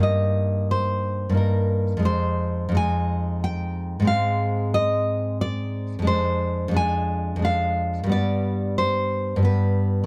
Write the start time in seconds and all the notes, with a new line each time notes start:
Already playing: G2 A#3
0.00 D#4 D#5
0.71 C5
1.29 G2 A#3
1.35 D#4 A#4
1.97 F2 G#3
2.03 D#4 C5
2.69 F2 G#3
2.75 D#4 G#5
3.44 G5
4.00 G#2 G#3
4.05 C4 F5
4.74 D#5
5.41 D5
5.99 F2 G#3
6.05 D4 C5
6.68 F2 G#3
6.74 D4 G#5
7.36 F2 G#3
7.42 D4 F5
8.04 G2 G3
8.09 B3 D5
8.78 C5
9.36 G2 G3
9.42 B3 B4